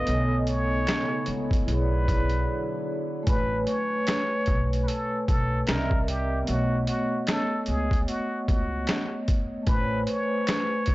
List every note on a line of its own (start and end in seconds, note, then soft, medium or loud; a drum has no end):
0.00 1.63 A3 medium
0.00 1.62 B3 medium
0.00 0.50 D#5 loud
0.06 0.84 B1 loud
0.06 1.66 C#3 medium
0.06 3.24 B3 medium
0.06 1.66 D#4 medium
0.06 1.63 A4 medium
0.06 1.65 C#5 medium
0.06 closed hi-hat medium
0.11 1.66 D#5 medium
0.11 1.67 G#5 medium
0.47 1.44 C#5 loud
0.47 closed hi-hat medium
0.87 finger snap medium
0.87 snare loud
0.87 closed hi-hat medium
0.89 finger snap medium
1.26 1.65 C#2 medium
1.26 closed hi-hat medium
1.51 kick medium
1.51 closed hi-hat medium
1.63 3.25 D3 medium
1.63 3.25 F#3 medium
1.63 3.22 E4 medium
1.63 3.25 E4 medium
1.68 2.43 B1 loud
1.68 3.25 G#4 medium
1.68 2.84 B4 medium
1.68 closed hi-hat medium
1.74 1.79 C#5 medium
1.80 3.31 D5 medium
2.08 kick medium
2.08 closed hi-hat medium
2.29 closed hi-hat soft
3.23 5.61 A3 medium
3.23 5.63 G#5 medium
3.23 closed hi-hat medium
3.27 3.64 A1 loud
3.27 3.65 B4 loud
3.27 5.65 B4 medium
3.27 kick loud
3.33 5.66 C#5 medium
3.67 4.78 C#5 loud
3.67 closed hi-hat medium
4.07 finger snap medium
4.07 snare loud
4.07 closed hi-hat medium
4.46 4.85 B1 medium
4.46 kick medium
4.46 closed hi-hat medium
4.73 closed hi-hat soft
4.83 4.89 B4 medium
4.87 5.27 A4 loud
4.87 closed hi-hat medium
5.28 5.65 B1 medium
5.28 5.69 A4 loud
5.28 kick medium
5.28 closed hi-hat medium
5.66 6.44 C2 medium
5.66 6.46 C4 medium
5.66 6.47 A#4 medium
5.66 6.09 A#4 medium
5.66 6.48 D5 soft
5.66 finger snap medium
5.66 snare loud
5.66 closed hi-hat medium
5.71 5.77 D#5 medium
5.77 6.52 E5 medium
5.91 kick medium
6.08 6.49 G4 medium
6.08 closed hi-hat medium
6.43 9.62 A3 medium
6.43 9.61 B3 medium
6.47 6.85 B1 medium
6.47 6.87 F#4 medium
6.47 9.64 C#5 medium
6.47 closed hi-hat medium
6.53 9.66 D#5 medium
6.87 7.24 F#4 medium
6.87 closed hi-hat medium
7.27 7.70 A4 medium
7.27 finger snap medium
7.27 snare loud
7.27 closed hi-hat medium
7.66 8.05 C#2 medium
7.66 8.10 G#4 medium
7.66 closed hi-hat medium
7.91 kick medium
7.91 closed hi-hat medium
8.08 8.48 F#4 medium
8.08 closed hi-hat medium
8.48 8.85 C#2 medium
8.48 9.24 F#4 medium
8.48 kick medium
8.48 closed hi-hat medium
8.87 finger snap medium
8.87 snare loud
8.87 closed hi-hat medium
8.89 finger snap medium
9.28 kick medium
9.28 closed hi-hat medium
9.63 10.95 A3 medium
9.63 10.95 G#5 medium
9.63 closed hi-hat medium
9.67 10.04 A1 loud
9.67 10.10 B4 loud
9.67 10.95 B4 medium
9.67 kick loud
9.74 9.78 C5 medium
9.80 10.95 C#5 medium
10.07 10.95 C#5 loud
10.07 closed hi-hat medium
10.47 finger snap medium
10.47 snare loud
10.47 closed hi-hat medium
10.49 finger snap medium
10.86 10.95 B1 medium
10.86 kick medium
10.86 closed hi-hat medium